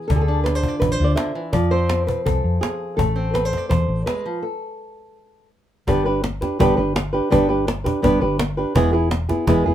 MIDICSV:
0, 0, Header, 1, 5, 480
1, 0, Start_track
1, 0, Tempo, 360577
1, 137, Time_signature, 4, 2, 24, 8
1, 12973, End_track
2, 0, Start_track
2, 0, Title_t, "Nylon-string guitar"
2, 0, Program_c, 0, 24
2, 0, Note_on_c, 0, 59, 59
2, 102, Note_on_c, 0, 69, 75
2, 136, Note_off_c, 0, 59, 0
2, 140, Note_on_c, 0, 50, 57
2, 211, Note_on_c, 0, 68, 64
2, 266, Note_off_c, 0, 69, 0
2, 282, Note_on_c, 0, 69, 76
2, 375, Note_on_c, 0, 62, 49
2, 576, Note_off_c, 0, 69, 0
2, 581, Note_on_c, 0, 71, 74
2, 734, Note_off_c, 0, 71, 0
2, 734, Note_on_c, 0, 72, 83
2, 794, Note_off_c, 0, 68, 0
2, 859, Note_on_c, 0, 65, 38
2, 902, Note_on_c, 0, 74, 65
2, 1054, Note_off_c, 0, 72, 0
2, 1059, Note_on_c, 0, 71, 74
2, 1220, Note_off_c, 0, 71, 0
2, 1220, Note_on_c, 0, 72, 66
2, 1326, Note_off_c, 0, 65, 0
2, 1342, Note_on_c, 0, 65, 42
2, 1372, Note_off_c, 0, 74, 0
2, 1388, Note_on_c, 0, 74, 78
2, 1536, Note_off_c, 0, 74, 0
2, 1541, Note_on_c, 0, 76, 79
2, 1546, Note_off_c, 0, 50, 0
2, 1562, Note_on_c, 0, 50, 53
2, 1796, Note_off_c, 0, 50, 0
2, 1801, Note_on_c, 0, 52, 54
2, 1878, Note_off_c, 0, 72, 0
2, 2026, Note_off_c, 0, 62, 0
2, 2026, Note_off_c, 0, 76, 0
2, 2030, Note_off_c, 0, 65, 0
2, 2031, Note_on_c, 0, 74, 83
2, 2037, Note_on_c, 0, 53, 64
2, 2048, Note_off_c, 0, 52, 0
2, 2277, Note_on_c, 0, 72, 80
2, 2285, Note_on_c, 0, 60, 53
2, 2748, Note_off_c, 0, 72, 0
2, 2753, Note_on_c, 0, 71, 70
2, 2763, Note_off_c, 0, 74, 0
2, 2997, Note_off_c, 0, 71, 0
2, 3002, Note_on_c, 0, 69, 68
2, 3474, Note_on_c, 0, 68, 68
2, 3932, Note_off_c, 0, 69, 0
2, 3937, Note_off_c, 0, 53, 0
2, 3942, Note_off_c, 0, 60, 0
2, 3948, Note_on_c, 0, 69, 76
2, 3965, Note_off_c, 0, 68, 0
2, 3973, Note_on_c, 0, 57, 59
2, 4202, Note_on_c, 0, 60, 55
2, 4438, Note_off_c, 0, 69, 0
2, 4443, Note_on_c, 0, 71, 80
2, 4594, Note_off_c, 0, 71, 0
2, 4594, Note_on_c, 0, 72, 74
2, 4752, Note_on_c, 0, 74, 64
2, 4901, Note_off_c, 0, 72, 0
2, 4917, Note_on_c, 0, 72, 83
2, 5400, Note_off_c, 0, 72, 0
2, 5405, Note_off_c, 0, 74, 0
2, 5405, Note_on_c, 0, 71, 73
2, 5410, Note_off_c, 0, 60, 0
2, 5417, Note_on_c, 0, 56, 50
2, 5656, Note_off_c, 0, 57, 0
2, 5657, Note_off_c, 0, 56, 0
2, 5665, Note_on_c, 0, 53, 54
2, 5886, Note_off_c, 0, 71, 0
2, 5891, Note_on_c, 0, 69, 60
2, 5901, Note_off_c, 0, 53, 0
2, 7282, Note_off_c, 0, 69, 0
2, 7815, Note_on_c, 0, 55, 81
2, 7822, Note_on_c, 0, 59, 73
2, 7825, Note_on_c, 0, 62, 91
2, 7829, Note_on_c, 0, 67, 93
2, 7837, Note_on_c, 0, 71, 76
2, 8045, Note_off_c, 0, 71, 0
2, 8047, Note_off_c, 0, 55, 0
2, 8050, Note_off_c, 0, 59, 0
2, 8052, Note_off_c, 0, 62, 0
2, 8054, Note_off_c, 0, 67, 0
2, 8061, Note_on_c, 0, 71, 55
2, 8075, Note_on_c, 0, 67, 50
2, 8081, Note_on_c, 0, 62, 45
2, 8286, Note_off_c, 0, 62, 0
2, 8286, Note_off_c, 0, 67, 0
2, 8290, Note_off_c, 0, 71, 0
2, 8533, Note_on_c, 0, 71, 45
2, 8552, Note_on_c, 0, 67, 46
2, 8562, Note_on_c, 0, 62, 43
2, 8766, Note_off_c, 0, 71, 0
2, 8772, Note_off_c, 0, 62, 0
2, 8776, Note_off_c, 0, 67, 0
2, 8776, Note_on_c, 0, 55, 84
2, 8784, Note_on_c, 0, 59, 73
2, 8788, Note_on_c, 0, 62, 84
2, 8791, Note_on_c, 0, 67, 84
2, 8799, Note_on_c, 0, 71, 86
2, 8995, Note_off_c, 0, 71, 0
2, 9007, Note_off_c, 0, 55, 0
2, 9007, Note_off_c, 0, 67, 0
2, 9010, Note_on_c, 0, 71, 48
2, 9011, Note_off_c, 0, 59, 0
2, 9013, Note_off_c, 0, 62, 0
2, 9023, Note_on_c, 0, 67, 43
2, 9037, Note_on_c, 0, 62, 45
2, 9245, Note_off_c, 0, 62, 0
2, 9245, Note_off_c, 0, 71, 0
2, 9246, Note_off_c, 0, 67, 0
2, 9488, Note_on_c, 0, 71, 54
2, 9502, Note_on_c, 0, 67, 52
2, 9509, Note_on_c, 0, 62, 49
2, 9719, Note_off_c, 0, 62, 0
2, 9723, Note_off_c, 0, 67, 0
2, 9723, Note_off_c, 0, 71, 0
2, 9723, Note_on_c, 0, 55, 81
2, 9733, Note_on_c, 0, 59, 72
2, 9735, Note_on_c, 0, 62, 86
2, 9739, Note_on_c, 0, 67, 83
2, 9746, Note_on_c, 0, 71, 91
2, 9950, Note_off_c, 0, 71, 0
2, 9960, Note_off_c, 0, 55, 0
2, 9964, Note_off_c, 0, 67, 0
2, 9965, Note_off_c, 0, 59, 0
2, 9966, Note_off_c, 0, 62, 0
2, 9966, Note_on_c, 0, 71, 54
2, 9980, Note_on_c, 0, 67, 52
2, 9988, Note_on_c, 0, 62, 43
2, 10202, Note_off_c, 0, 62, 0
2, 10202, Note_off_c, 0, 71, 0
2, 10205, Note_off_c, 0, 67, 0
2, 10439, Note_on_c, 0, 71, 50
2, 10448, Note_on_c, 0, 67, 46
2, 10460, Note_on_c, 0, 62, 43
2, 10677, Note_off_c, 0, 62, 0
2, 10678, Note_off_c, 0, 71, 0
2, 10680, Note_on_c, 0, 55, 80
2, 10683, Note_off_c, 0, 67, 0
2, 10689, Note_on_c, 0, 59, 80
2, 10693, Note_on_c, 0, 62, 79
2, 10699, Note_on_c, 0, 67, 80
2, 10706, Note_on_c, 0, 71, 89
2, 10915, Note_off_c, 0, 71, 0
2, 10919, Note_off_c, 0, 55, 0
2, 10923, Note_off_c, 0, 59, 0
2, 10924, Note_off_c, 0, 67, 0
2, 10925, Note_off_c, 0, 62, 0
2, 10931, Note_on_c, 0, 71, 53
2, 10940, Note_on_c, 0, 67, 49
2, 10953, Note_on_c, 0, 62, 42
2, 11164, Note_off_c, 0, 67, 0
2, 11164, Note_off_c, 0, 71, 0
2, 11167, Note_off_c, 0, 62, 0
2, 11411, Note_on_c, 0, 71, 50
2, 11419, Note_on_c, 0, 67, 53
2, 11434, Note_on_c, 0, 62, 45
2, 11644, Note_off_c, 0, 71, 0
2, 11645, Note_on_c, 0, 52, 89
2, 11648, Note_off_c, 0, 67, 0
2, 11653, Note_off_c, 0, 62, 0
2, 11654, Note_on_c, 0, 56, 77
2, 11659, Note_on_c, 0, 59, 79
2, 11667, Note_on_c, 0, 64, 83
2, 11672, Note_on_c, 0, 68, 86
2, 11869, Note_off_c, 0, 68, 0
2, 11880, Note_off_c, 0, 52, 0
2, 11880, Note_off_c, 0, 64, 0
2, 11885, Note_off_c, 0, 56, 0
2, 11885, Note_on_c, 0, 68, 55
2, 11888, Note_off_c, 0, 59, 0
2, 11896, Note_on_c, 0, 64, 57
2, 11909, Note_on_c, 0, 59, 48
2, 12110, Note_off_c, 0, 59, 0
2, 12116, Note_off_c, 0, 64, 0
2, 12121, Note_off_c, 0, 68, 0
2, 12362, Note_on_c, 0, 68, 49
2, 12375, Note_on_c, 0, 64, 54
2, 12385, Note_on_c, 0, 59, 40
2, 12599, Note_off_c, 0, 68, 0
2, 12602, Note_off_c, 0, 59, 0
2, 12605, Note_on_c, 0, 52, 73
2, 12606, Note_off_c, 0, 64, 0
2, 12614, Note_on_c, 0, 56, 78
2, 12618, Note_on_c, 0, 59, 75
2, 12622, Note_on_c, 0, 64, 79
2, 12630, Note_on_c, 0, 68, 88
2, 12838, Note_off_c, 0, 68, 0
2, 12840, Note_off_c, 0, 52, 0
2, 12845, Note_off_c, 0, 56, 0
2, 12847, Note_off_c, 0, 59, 0
2, 12849, Note_off_c, 0, 64, 0
2, 12854, Note_on_c, 0, 68, 50
2, 12866, Note_on_c, 0, 64, 50
2, 12873, Note_on_c, 0, 59, 40
2, 12973, Note_off_c, 0, 59, 0
2, 12973, Note_off_c, 0, 64, 0
2, 12973, Note_off_c, 0, 68, 0
2, 12973, End_track
3, 0, Start_track
3, 0, Title_t, "Fretless electric bass"
3, 0, Program_c, 1, 35
3, 139, Note_on_c, 1, 38, 82
3, 875, Note_off_c, 1, 38, 0
3, 1090, Note_on_c, 1, 33, 71
3, 1277, Note_off_c, 1, 33, 0
3, 1331, Note_on_c, 1, 38, 79
3, 1517, Note_off_c, 1, 38, 0
3, 2050, Note_on_c, 1, 41, 89
3, 2790, Note_off_c, 1, 41, 0
3, 3005, Note_on_c, 1, 36, 70
3, 3193, Note_off_c, 1, 36, 0
3, 3250, Note_on_c, 1, 41, 73
3, 3437, Note_off_c, 1, 41, 0
3, 3964, Note_on_c, 1, 33, 93
3, 4707, Note_off_c, 1, 33, 0
3, 4928, Note_on_c, 1, 40, 74
3, 5116, Note_off_c, 1, 40, 0
3, 5170, Note_on_c, 1, 33, 75
3, 5357, Note_off_c, 1, 33, 0
3, 7817, Note_on_c, 1, 31, 101
3, 8556, Note_off_c, 1, 31, 0
3, 8780, Note_on_c, 1, 31, 94
3, 8964, Note_off_c, 1, 31, 0
3, 9018, Note_on_c, 1, 31, 83
3, 9571, Note_off_c, 1, 31, 0
3, 9740, Note_on_c, 1, 31, 103
3, 10477, Note_off_c, 1, 31, 0
3, 10700, Note_on_c, 1, 31, 86
3, 10883, Note_off_c, 1, 31, 0
3, 10937, Note_on_c, 1, 31, 85
3, 11490, Note_off_c, 1, 31, 0
3, 11655, Note_on_c, 1, 28, 108
3, 12393, Note_off_c, 1, 28, 0
3, 12618, Note_on_c, 1, 28, 81
3, 12801, Note_off_c, 1, 28, 0
3, 12858, Note_on_c, 1, 28, 81
3, 12973, Note_off_c, 1, 28, 0
3, 12973, End_track
4, 0, Start_track
4, 0, Title_t, "Cajon"
4, 133, Note_on_c, 9, 36, 78
4, 266, Note_off_c, 9, 36, 0
4, 613, Note_on_c, 9, 38, 81
4, 746, Note_off_c, 9, 38, 0
4, 843, Note_on_c, 9, 36, 68
4, 976, Note_off_c, 9, 36, 0
4, 1088, Note_on_c, 9, 36, 84
4, 1222, Note_off_c, 9, 36, 0
4, 1563, Note_on_c, 9, 38, 85
4, 1696, Note_off_c, 9, 38, 0
4, 2038, Note_on_c, 9, 36, 85
4, 2171, Note_off_c, 9, 36, 0
4, 2522, Note_on_c, 9, 38, 87
4, 2655, Note_off_c, 9, 38, 0
4, 2775, Note_on_c, 9, 36, 66
4, 2908, Note_off_c, 9, 36, 0
4, 3016, Note_on_c, 9, 36, 83
4, 3149, Note_off_c, 9, 36, 0
4, 3500, Note_on_c, 9, 38, 93
4, 3633, Note_off_c, 9, 38, 0
4, 3981, Note_on_c, 9, 36, 85
4, 4114, Note_off_c, 9, 36, 0
4, 4459, Note_on_c, 9, 38, 78
4, 4592, Note_off_c, 9, 38, 0
4, 4700, Note_on_c, 9, 36, 68
4, 4700, Note_on_c, 9, 38, 29
4, 4834, Note_off_c, 9, 36, 0
4, 4834, Note_off_c, 9, 38, 0
4, 4937, Note_on_c, 9, 36, 88
4, 5070, Note_off_c, 9, 36, 0
4, 5422, Note_on_c, 9, 38, 89
4, 5555, Note_off_c, 9, 38, 0
4, 7823, Note_on_c, 9, 36, 83
4, 7956, Note_off_c, 9, 36, 0
4, 8303, Note_on_c, 9, 38, 88
4, 8436, Note_off_c, 9, 38, 0
4, 8548, Note_on_c, 9, 36, 68
4, 8548, Note_on_c, 9, 38, 28
4, 8681, Note_off_c, 9, 36, 0
4, 8681, Note_off_c, 9, 38, 0
4, 8788, Note_on_c, 9, 36, 96
4, 8921, Note_off_c, 9, 36, 0
4, 9265, Note_on_c, 9, 38, 101
4, 9398, Note_off_c, 9, 38, 0
4, 9748, Note_on_c, 9, 36, 87
4, 9881, Note_off_c, 9, 36, 0
4, 10227, Note_on_c, 9, 38, 88
4, 10360, Note_off_c, 9, 38, 0
4, 10467, Note_on_c, 9, 36, 79
4, 10600, Note_off_c, 9, 36, 0
4, 10704, Note_on_c, 9, 36, 85
4, 10837, Note_off_c, 9, 36, 0
4, 11175, Note_on_c, 9, 38, 107
4, 11308, Note_off_c, 9, 38, 0
4, 11655, Note_on_c, 9, 36, 94
4, 11788, Note_off_c, 9, 36, 0
4, 12130, Note_on_c, 9, 38, 94
4, 12263, Note_off_c, 9, 38, 0
4, 12373, Note_on_c, 9, 36, 76
4, 12373, Note_on_c, 9, 38, 31
4, 12506, Note_off_c, 9, 36, 0
4, 12506, Note_off_c, 9, 38, 0
4, 12612, Note_on_c, 9, 36, 93
4, 12745, Note_off_c, 9, 36, 0
4, 12973, End_track
5, 0, Start_track
5, 0, Title_t, "Muted nylon-string guitar strokes"
5, 8297, Note_on_c, 9, 29, 62
5, 8430, Note_off_c, 9, 29, 0
5, 9258, Note_on_c, 9, 29, 66
5, 9391, Note_off_c, 9, 29, 0
5, 10210, Note_on_c, 9, 29, 63
5, 10343, Note_off_c, 9, 29, 0
5, 11174, Note_on_c, 9, 29, 61
5, 11307, Note_off_c, 9, 29, 0
5, 12124, Note_on_c, 9, 29, 62
5, 12257, Note_off_c, 9, 29, 0
5, 12973, End_track
0, 0, End_of_file